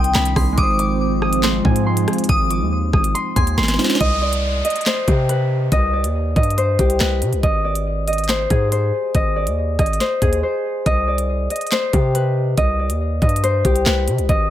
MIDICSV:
0, 0, Header, 1, 8, 480
1, 0, Start_track
1, 0, Key_signature, -3, "minor"
1, 0, Tempo, 428571
1, 645, Time_signature, 4, 2, 24, 8
1, 16241, End_track
2, 0, Start_track
2, 0, Title_t, "Synth bell"
2, 0, Program_c, 0, 98
2, 0, Note_on_c, 0, 87, 81
2, 377, Note_off_c, 0, 87, 0
2, 406, Note_on_c, 0, 84, 78
2, 634, Note_off_c, 0, 84, 0
2, 647, Note_on_c, 0, 86, 113
2, 1098, Note_off_c, 0, 86, 0
2, 2567, Note_on_c, 0, 87, 112
2, 3018, Note_off_c, 0, 87, 0
2, 3765, Note_on_c, 0, 84, 87
2, 4442, Note_off_c, 0, 84, 0
2, 16241, End_track
3, 0, Start_track
3, 0, Title_t, "Harp"
3, 0, Program_c, 1, 46
3, 0, Note_on_c, 1, 79, 91
3, 0, Note_on_c, 1, 84, 100
3, 0, Note_on_c, 1, 87, 77
3, 168, Note_on_c, 1, 83, 93
3, 235, Note_off_c, 1, 84, 0
3, 644, Note_off_c, 1, 87, 0
3, 649, Note_on_c, 1, 87, 109
3, 889, Note_on_c, 1, 86, 87
3, 956, Note_off_c, 1, 87, 0
3, 1366, Note_on_c, 1, 87, 80
3, 1433, Note_off_c, 1, 86, 0
3, 1606, Note_on_c, 1, 84, 96
3, 1668, Note_off_c, 1, 79, 0
3, 1673, Note_off_c, 1, 83, 0
3, 1845, Note_on_c, 1, 80, 77
3, 2084, Note_off_c, 1, 84, 0
3, 2088, Note_on_c, 1, 84, 78
3, 2562, Note_off_c, 1, 87, 0
3, 2566, Note_on_c, 1, 87, 108
3, 2807, Note_on_c, 1, 86, 79
3, 2874, Note_off_c, 1, 87, 0
3, 3288, Note_on_c, 1, 87, 82
3, 3356, Note_off_c, 1, 86, 0
3, 3520, Note_off_c, 1, 84, 0
3, 3524, Note_on_c, 1, 84, 99
3, 3525, Note_off_c, 1, 80, 0
3, 3765, Note_on_c, 1, 80, 80
3, 4000, Note_off_c, 1, 84, 0
3, 4004, Note_on_c, 1, 84, 90
3, 4485, Note_on_c, 1, 75, 111
3, 4606, Note_off_c, 1, 87, 0
3, 4724, Note_on_c, 1, 74, 81
3, 4791, Note_off_c, 1, 75, 0
3, 5204, Note_on_c, 1, 75, 79
3, 5271, Note_off_c, 1, 74, 0
3, 5445, Note_off_c, 1, 80, 0
3, 5445, Note_on_c, 1, 72, 90
3, 5467, Note_off_c, 1, 84, 0
3, 5687, Note_on_c, 1, 67, 74
3, 5927, Note_on_c, 1, 71, 80
3, 5994, Note_off_c, 1, 72, 0
3, 6402, Note_off_c, 1, 75, 0
3, 6407, Note_on_c, 1, 75, 100
3, 6644, Note_on_c, 1, 74, 72
3, 6711, Note_off_c, 1, 75, 0
3, 7126, Note_on_c, 1, 75, 77
3, 7194, Note_off_c, 1, 74, 0
3, 7366, Note_on_c, 1, 72, 95
3, 7433, Note_off_c, 1, 71, 0
3, 7601, Note_off_c, 1, 67, 0
3, 7606, Note_on_c, 1, 67, 85
3, 7844, Note_on_c, 1, 71, 87
3, 7911, Note_off_c, 1, 72, 0
3, 8319, Note_off_c, 1, 75, 0
3, 8324, Note_on_c, 1, 75, 104
3, 8563, Note_on_c, 1, 74, 84
3, 8631, Note_off_c, 1, 75, 0
3, 9045, Note_on_c, 1, 75, 79
3, 9112, Note_off_c, 1, 74, 0
3, 9285, Note_on_c, 1, 72, 93
3, 9352, Note_off_c, 1, 71, 0
3, 9527, Note_on_c, 1, 68, 78
3, 9594, Note_off_c, 1, 67, 0
3, 9762, Note_off_c, 1, 72, 0
3, 9766, Note_on_c, 1, 72, 80
3, 10242, Note_off_c, 1, 75, 0
3, 10246, Note_on_c, 1, 75, 109
3, 10485, Note_on_c, 1, 74, 76
3, 10552, Note_off_c, 1, 75, 0
3, 10966, Note_on_c, 1, 75, 80
3, 11033, Note_off_c, 1, 74, 0
3, 11199, Note_off_c, 1, 72, 0
3, 11204, Note_on_c, 1, 72, 93
3, 11441, Note_off_c, 1, 68, 0
3, 11445, Note_on_c, 1, 68, 77
3, 11679, Note_off_c, 1, 72, 0
3, 11684, Note_on_c, 1, 72, 84
3, 12161, Note_off_c, 1, 75, 0
3, 12165, Note_on_c, 1, 75, 112
3, 12406, Note_on_c, 1, 74, 82
3, 12473, Note_off_c, 1, 75, 0
3, 12885, Note_on_c, 1, 75, 77
3, 12953, Note_off_c, 1, 74, 0
3, 13123, Note_off_c, 1, 72, 0
3, 13128, Note_on_c, 1, 72, 87
3, 13366, Note_on_c, 1, 67, 76
3, 13433, Note_off_c, 1, 68, 0
3, 13607, Note_on_c, 1, 71, 79
3, 13674, Note_off_c, 1, 72, 0
3, 14081, Note_off_c, 1, 75, 0
3, 14086, Note_on_c, 1, 75, 101
3, 14328, Note_on_c, 1, 74, 69
3, 14395, Note_off_c, 1, 75, 0
3, 14809, Note_on_c, 1, 75, 76
3, 14876, Note_off_c, 1, 74, 0
3, 15048, Note_on_c, 1, 72, 100
3, 15115, Note_off_c, 1, 71, 0
3, 15283, Note_off_c, 1, 67, 0
3, 15287, Note_on_c, 1, 67, 87
3, 15525, Note_on_c, 1, 71, 88
3, 15592, Note_off_c, 1, 72, 0
3, 16000, Note_off_c, 1, 75, 0
3, 16005, Note_on_c, 1, 75, 107
3, 16241, Note_off_c, 1, 67, 0
3, 16241, Note_off_c, 1, 71, 0
3, 16241, Note_off_c, 1, 75, 0
3, 16241, End_track
4, 0, Start_track
4, 0, Title_t, "Synth keys"
4, 0, Program_c, 2, 88
4, 0, Control_c, 2, 64, 127
4, 0, Note_on_c, 2, 48, 71
4, 0, Note_on_c, 2, 60, 62
4, 0, Note_on_c, 2, 62, 75
4, 0, Note_on_c, 2, 63, 63
4, 573, Note_off_c, 2, 48, 0
4, 590, Note_on_c, 2, 56, 70
4, 592, Note_off_c, 2, 60, 0
4, 611, Note_off_c, 2, 63, 0
4, 627, Note_on_c, 2, 63, 64
4, 630, Note_off_c, 2, 62, 0
4, 661, Control_c, 2, 64, 0
4, 665, Note_on_c, 2, 65, 66
4, 702, Note_on_c, 2, 72, 81
4, 833, Control_c, 2, 64, 127
4, 4173, Note_off_c, 2, 56, 0
4, 4192, Note_off_c, 2, 63, 0
4, 4211, Note_off_c, 2, 65, 0
4, 4217, Note_on_c, 2, 56, 52
4, 4229, Note_off_c, 2, 72, 0
4, 4236, Note_on_c, 2, 63, 49
4, 4255, Note_on_c, 2, 65, 45
4, 4274, Note_on_c, 2, 72, 56
4, 4471, Note_off_c, 2, 56, 0
4, 4481, Note_off_c, 2, 63, 0
4, 4490, Note_off_c, 2, 65, 0
4, 4498, Control_c, 2, 64, 0
4, 4500, Note_off_c, 2, 72, 0
4, 16241, End_track
5, 0, Start_track
5, 0, Title_t, "Analog synth pad"
5, 0, Program_c, 3, 89
5, 0, Note_on_c, 3, 51, 88
5, 0, Note_on_c, 3, 60, 80
5, 601, Note_off_c, 3, 60, 0
5, 606, Note_off_c, 3, 51, 0
5, 644, Note_on_c, 3, 53, 91
5, 644, Note_on_c, 3, 56, 82
5, 645, Note_on_c, 3, 60, 96
5, 4446, Note_off_c, 3, 53, 0
5, 4446, Note_off_c, 3, 56, 0
5, 4447, Note_off_c, 3, 60, 0
5, 16241, End_track
6, 0, Start_track
6, 0, Title_t, "808-style bass"
6, 0, Program_c, 4, 38
6, 0, Note_on_c, 4, 36, 106
6, 156, Note_off_c, 4, 36, 0
6, 167, Note_on_c, 4, 36, 109
6, 397, Note_off_c, 4, 36, 0
6, 406, Note_on_c, 4, 36, 107
6, 636, Note_off_c, 4, 36, 0
6, 646, Note_on_c, 4, 32, 116
6, 1801, Note_off_c, 4, 32, 0
6, 1847, Note_on_c, 4, 44, 106
6, 2307, Note_off_c, 4, 44, 0
6, 2566, Note_on_c, 4, 32, 110
6, 2925, Note_on_c, 4, 39, 105
6, 2942, Note_off_c, 4, 32, 0
6, 3267, Note_off_c, 4, 39, 0
6, 3287, Note_on_c, 4, 32, 106
6, 3517, Note_off_c, 4, 32, 0
6, 3766, Note_on_c, 4, 39, 105
6, 3996, Note_off_c, 4, 39, 0
6, 4005, Note_on_c, 4, 32, 108
6, 4236, Note_off_c, 4, 32, 0
6, 4486, Note_on_c, 4, 36, 113
6, 5177, Note_off_c, 4, 36, 0
6, 5686, Note_on_c, 4, 48, 104
6, 6377, Note_off_c, 4, 48, 0
6, 6406, Note_on_c, 4, 36, 109
6, 6765, Note_on_c, 4, 39, 105
6, 6782, Note_off_c, 4, 36, 0
6, 7107, Note_off_c, 4, 39, 0
6, 7125, Note_on_c, 4, 43, 100
6, 7586, Note_off_c, 4, 43, 0
6, 7605, Note_on_c, 4, 36, 108
6, 7836, Note_off_c, 4, 36, 0
6, 7845, Note_on_c, 4, 36, 107
6, 8086, Note_on_c, 4, 48, 101
6, 8102, Note_off_c, 4, 36, 0
6, 8206, Note_on_c, 4, 36, 96
6, 8223, Note_off_c, 4, 48, 0
6, 8320, Note_off_c, 4, 36, 0
6, 8325, Note_on_c, 4, 32, 114
6, 9480, Note_off_c, 4, 32, 0
6, 9525, Note_on_c, 4, 44, 108
6, 9986, Note_off_c, 4, 44, 0
6, 10244, Note_on_c, 4, 32, 105
6, 10605, Note_on_c, 4, 39, 100
6, 10621, Note_off_c, 4, 32, 0
6, 10947, Note_off_c, 4, 39, 0
6, 10964, Note_on_c, 4, 32, 106
6, 11195, Note_off_c, 4, 32, 0
6, 11444, Note_on_c, 4, 39, 102
6, 11675, Note_off_c, 4, 39, 0
6, 12165, Note_on_c, 4, 36, 114
6, 12856, Note_off_c, 4, 36, 0
6, 13365, Note_on_c, 4, 48, 106
6, 14056, Note_off_c, 4, 48, 0
6, 14085, Note_on_c, 4, 36, 107
6, 14445, Note_on_c, 4, 39, 104
6, 14461, Note_off_c, 4, 36, 0
6, 14787, Note_off_c, 4, 39, 0
6, 14805, Note_on_c, 4, 43, 103
6, 15266, Note_off_c, 4, 43, 0
6, 15286, Note_on_c, 4, 36, 106
6, 15516, Note_off_c, 4, 36, 0
6, 15525, Note_on_c, 4, 36, 111
6, 15765, Note_on_c, 4, 48, 101
6, 15782, Note_off_c, 4, 36, 0
6, 15886, Note_on_c, 4, 36, 102
6, 15902, Note_off_c, 4, 48, 0
6, 16000, Note_off_c, 4, 36, 0
6, 16006, Note_on_c, 4, 32, 112
6, 16241, Note_off_c, 4, 32, 0
6, 16241, End_track
7, 0, Start_track
7, 0, Title_t, "Downlifter"
7, 0, Program_c, 5, 103
7, 4486, Note_on_c, 5, 60, 82
7, 8326, Note_off_c, 5, 60, 0
7, 16241, End_track
8, 0, Start_track
8, 0, Title_t, "Drums"
8, 47, Note_on_c, 9, 42, 80
8, 159, Note_off_c, 9, 42, 0
8, 164, Note_on_c, 9, 39, 96
8, 165, Note_on_c, 9, 38, 121
8, 276, Note_off_c, 9, 39, 0
8, 277, Note_off_c, 9, 38, 0
8, 285, Note_on_c, 9, 42, 81
8, 397, Note_off_c, 9, 42, 0
8, 406, Note_on_c, 9, 36, 98
8, 406, Note_on_c, 9, 46, 56
8, 407, Note_on_c, 9, 37, 96
8, 518, Note_off_c, 9, 36, 0
8, 518, Note_off_c, 9, 46, 0
8, 519, Note_off_c, 9, 37, 0
8, 645, Note_on_c, 9, 42, 85
8, 646, Note_on_c, 9, 36, 125
8, 757, Note_off_c, 9, 42, 0
8, 758, Note_off_c, 9, 36, 0
8, 886, Note_on_c, 9, 42, 80
8, 998, Note_off_c, 9, 42, 0
8, 1366, Note_on_c, 9, 37, 91
8, 1478, Note_off_c, 9, 37, 0
8, 1485, Note_on_c, 9, 42, 85
8, 1597, Note_off_c, 9, 42, 0
8, 1605, Note_on_c, 9, 39, 104
8, 1606, Note_on_c, 9, 38, 127
8, 1717, Note_off_c, 9, 39, 0
8, 1718, Note_off_c, 9, 38, 0
8, 1847, Note_on_c, 9, 36, 97
8, 1959, Note_off_c, 9, 36, 0
8, 1968, Note_on_c, 9, 42, 80
8, 2080, Note_off_c, 9, 42, 0
8, 2205, Note_on_c, 9, 42, 85
8, 2317, Note_off_c, 9, 42, 0
8, 2327, Note_on_c, 9, 37, 100
8, 2327, Note_on_c, 9, 42, 60
8, 2387, Note_off_c, 9, 42, 0
8, 2387, Note_on_c, 9, 42, 58
8, 2439, Note_off_c, 9, 37, 0
8, 2446, Note_off_c, 9, 42, 0
8, 2446, Note_on_c, 9, 42, 59
8, 2506, Note_off_c, 9, 42, 0
8, 2506, Note_on_c, 9, 42, 59
8, 2565, Note_off_c, 9, 42, 0
8, 2565, Note_on_c, 9, 42, 86
8, 2566, Note_on_c, 9, 36, 126
8, 2677, Note_off_c, 9, 42, 0
8, 2678, Note_off_c, 9, 36, 0
8, 2806, Note_on_c, 9, 42, 77
8, 2918, Note_off_c, 9, 42, 0
8, 3286, Note_on_c, 9, 36, 93
8, 3287, Note_on_c, 9, 37, 90
8, 3398, Note_off_c, 9, 36, 0
8, 3399, Note_off_c, 9, 37, 0
8, 3406, Note_on_c, 9, 42, 83
8, 3518, Note_off_c, 9, 42, 0
8, 3531, Note_on_c, 9, 42, 91
8, 3643, Note_off_c, 9, 42, 0
8, 3767, Note_on_c, 9, 36, 92
8, 3767, Note_on_c, 9, 42, 82
8, 3879, Note_off_c, 9, 36, 0
8, 3879, Note_off_c, 9, 42, 0
8, 3887, Note_on_c, 9, 42, 78
8, 3999, Note_off_c, 9, 42, 0
8, 4007, Note_on_c, 9, 38, 62
8, 4066, Note_off_c, 9, 38, 0
8, 4066, Note_on_c, 9, 38, 60
8, 4124, Note_on_c, 9, 42, 85
8, 4126, Note_off_c, 9, 38, 0
8, 4126, Note_on_c, 9, 38, 77
8, 4185, Note_off_c, 9, 38, 0
8, 4185, Note_on_c, 9, 38, 69
8, 4236, Note_off_c, 9, 42, 0
8, 4246, Note_off_c, 9, 38, 0
8, 4246, Note_on_c, 9, 38, 92
8, 4246, Note_on_c, 9, 46, 54
8, 4306, Note_off_c, 9, 38, 0
8, 4306, Note_on_c, 9, 38, 87
8, 4358, Note_off_c, 9, 46, 0
8, 4365, Note_off_c, 9, 38, 0
8, 4365, Note_on_c, 9, 38, 111
8, 4426, Note_off_c, 9, 38, 0
8, 4426, Note_on_c, 9, 38, 101
8, 4485, Note_on_c, 9, 42, 80
8, 4486, Note_on_c, 9, 36, 120
8, 4538, Note_off_c, 9, 38, 0
8, 4597, Note_off_c, 9, 42, 0
8, 4598, Note_off_c, 9, 36, 0
8, 4846, Note_on_c, 9, 42, 80
8, 4958, Note_off_c, 9, 42, 0
8, 5206, Note_on_c, 9, 42, 73
8, 5266, Note_off_c, 9, 42, 0
8, 5266, Note_on_c, 9, 42, 63
8, 5327, Note_off_c, 9, 42, 0
8, 5327, Note_on_c, 9, 42, 52
8, 5387, Note_off_c, 9, 42, 0
8, 5387, Note_on_c, 9, 42, 43
8, 5445, Note_on_c, 9, 39, 99
8, 5446, Note_on_c, 9, 38, 120
8, 5450, Note_off_c, 9, 42, 0
8, 5450, Note_on_c, 9, 42, 91
8, 5557, Note_off_c, 9, 39, 0
8, 5558, Note_off_c, 9, 38, 0
8, 5562, Note_off_c, 9, 42, 0
8, 5686, Note_on_c, 9, 36, 92
8, 5686, Note_on_c, 9, 42, 88
8, 5798, Note_off_c, 9, 36, 0
8, 5798, Note_off_c, 9, 42, 0
8, 5928, Note_on_c, 9, 42, 89
8, 6040, Note_off_c, 9, 42, 0
8, 6405, Note_on_c, 9, 42, 80
8, 6406, Note_on_c, 9, 36, 119
8, 6517, Note_off_c, 9, 42, 0
8, 6518, Note_off_c, 9, 36, 0
8, 6766, Note_on_c, 9, 42, 81
8, 6878, Note_off_c, 9, 42, 0
8, 7125, Note_on_c, 9, 36, 96
8, 7125, Note_on_c, 9, 42, 44
8, 7206, Note_off_c, 9, 42, 0
8, 7206, Note_on_c, 9, 42, 59
8, 7237, Note_off_c, 9, 36, 0
8, 7285, Note_off_c, 9, 42, 0
8, 7285, Note_on_c, 9, 42, 73
8, 7369, Note_off_c, 9, 42, 0
8, 7369, Note_on_c, 9, 42, 92
8, 7481, Note_off_c, 9, 42, 0
8, 7605, Note_on_c, 9, 36, 97
8, 7605, Note_on_c, 9, 42, 88
8, 7717, Note_off_c, 9, 36, 0
8, 7717, Note_off_c, 9, 42, 0
8, 7726, Note_on_c, 9, 42, 79
8, 7838, Note_off_c, 9, 42, 0
8, 7843, Note_on_c, 9, 39, 92
8, 7844, Note_on_c, 9, 38, 114
8, 7955, Note_off_c, 9, 39, 0
8, 7956, Note_off_c, 9, 38, 0
8, 8084, Note_on_c, 9, 42, 70
8, 8196, Note_off_c, 9, 42, 0
8, 8205, Note_on_c, 9, 42, 39
8, 8317, Note_off_c, 9, 42, 0
8, 8325, Note_on_c, 9, 36, 121
8, 8325, Note_on_c, 9, 42, 67
8, 8437, Note_off_c, 9, 36, 0
8, 8437, Note_off_c, 9, 42, 0
8, 8685, Note_on_c, 9, 42, 80
8, 8797, Note_off_c, 9, 42, 0
8, 9045, Note_on_c, 9, 42, 73
8, 9105, Note_off_c, 9, 42, 0
8, 9105, Note_on_c, 9, 42, 65
8, 9165, Note_off_c, 9, 42, 0
8, 9165, Note_on_c, 9, 42, 51
8, 9225, Note_off_c, 9, 42, 0
8, 9225, Note_on_c, 9, 42, 42
8, 9283, Note_on_c, 9, 39, 101
8, 9284, Note_on_c, 9, 38, 127
8, 9288, Note_off_c, 9, 42, 0
8, 9288, Note_on_c, 9, 42, 90
8, 9395, Note_off_c, 9, 39, 0
8, 9396, Note_off_c, 9, 38, 0
8, 9400, Note_off_c, 9, 42, 0
8, 9524, Note_on_c, 9, 42, 85
8, 9525, Note_on_c, 9, 36, 92
8, 9636, Note_off_c, 9, 42, 0
8, 9637, Note_off_c, 9, 36, 0
8, 9767, Note_on_c, 9, 42, 88
8, 9879, Note_off_c, 9, 42, 0
8, 10243, Note_on_c, 9, 42, 82
8, 10244, Note_on_c, 9, 36, 119
8, 10355, Note_off_c, 9, 42, 0
8, 10356, Note_off_c, 9, 36, 0
8, 10605, Note_on_c, 9, 42, 82
8, 10717, Note_off_c, 9, 42, 0
8, 10965, Note_on_c, 9, 36, 94
8, 10965, Note_on_c, 9, 37, 90
8, 10965, Note_on_c, 9, 42, 61
8, 11045, Note_off_c, 9, 42, 0
8, 11045, Note_on_c, 9, 42, 62
8, 11077, Note_off_c, 9, 36, 0
8, 11077, Note_off_c, 9, 37, 0
8, 11125, Note_off_c, 9, 42, 0
8, 11125, Note_on_c, 9, 42, 62
8, 11204, Note_on_c, 9, 38, 74
8, 11208, Note_off_c, 9, 42, 0
8, 11208, Note_on_c, 9, 42, 89
8, 11316, Note_off_c, 9, 38, 0
8, 11320, Note_off_c, 9, 42, 0
8, 11445, Note_on_c, 9, 36, 91
8, 11445, Note_on_c, 9, 42, 88
8, 11557, Note_off_c, 9, 36, 0
8, 11557, Note_off_c, 9, 42, 0
8, 11566, Note_on_c, 9, 42, 77
8, 11678, Note_off_c, 9, 42, 0
8, 12164, Note_on_c, 9, 36, 118
8, 12165, Note_on_c, 9, 42, 65
8, 12276, Note_off_c, 9, 36, 0
8, 12277, Note_off_c, 9, 42, 0
8, 12524, Note_on_c, 9, 42, 81
8, 12636, Note_off_c, 9, 42, 0
8, 12884, Note_on_c, 9, 42, 71
8, 12945, Note_off_c, 9, 42, 0
8, 12945, Note_on_c, 9, 42, 64
8, 13005, Note_off_c, 9, 42, 0
8, 13005, Note_on_c, 9, 42, 52
8, 13066, Note_off_c, 9, 42, 0
8, 13066, Note_on_c, 9, 42, 43
8, 13124, Note_on_c, 9, 39, 98
8, 13125, Note_on_c, 9, 38, 127
8, 13129, Note_off_c, 9, 42, 0
8, 13129, Note_on_c, 9, 42, 90
8, 13236, Note_off_c, 9, 39, 0
8, 13237, Note_off_c, 9, 38, 0
8, 13241, Note_off_c, 9, 42, 0
8, 13365, Note_on_c, 9, 36, 95
8, 13365, Note_on_c, 9, 42, 89
8, 13477, Note_off_c, 9, 36, 0
8, 13477, Note_off_c, 9, 42, 0
8, 13607, Note_on_c, 9, 42, 88
8, 13719, Note_off_c, 9, 42, 0
8, 14084, Note_on_c, 9, 42, 82
8, 14085, Note_on_c, 9, 36, 115
8, 14196, Note_off_c, 9, 42, 0
8, 14197, Note_off_c, 9, 36, 0
8, 14445, Note_on_c, 9, 42, 83
8, 14557, Note_off_c, 9, 42, 0
8, 14805, Note_on_c, 9, 36, 91
8, 14805, Note_on_c, 9, 42, 44
8, 14885, Note_off_c, 9, 42, 0
8, 14885, Note_on_c, 9, 42, 58
8, 14917, Note_off_c, 9, 36, 0
8, 14965, Note_off_c, 9, 42, 0
8, 14965, Note_on_c, 9, 42, 75
8, 15049, Note_off_c, 9, 42, 0
8, 15049, Note_on_c, 9, 42, 91
8, 15161, Note_off_c, 9, 42, 0
8, 15286, Note_on_c, 9, 36, 93
8, 15286, Note_on_c, 9, 42, 84
8, 15398, Note_off_c, 9, 36, 0
8, 15398, Note_off_c, 9, 42, 0
8, 15406, Note_on_c, 9, 42, 77
8, 15518, Note_off_c, 9, 42, 0
8, 15525, Note_on_c, 9, 39, 94
8, 15526, Note_on_c, 9, 38, 120
8, 15637, Note_off_c, 9, 39, 0
8, 15638, Note_off_c, 9, 38, 0
8, 15765, Note_on_c, 9, 42, 74
8, 15877, Note_off_c, 9, 42, 0
8, 15886, Note_on_c, 9, 42, 40
8, 15998, Note_off_c, 9, 42, 0
8, 16006, Note_on_c, 9, 36, 120
8, 16006, Note_on_c, 9, 42, 65
8, 16118, Note_off_c, 9, 36, 0
8, 16118, Note_off_c, 9, 42, 0
8, 16241, End_track
0, 0, End_of_file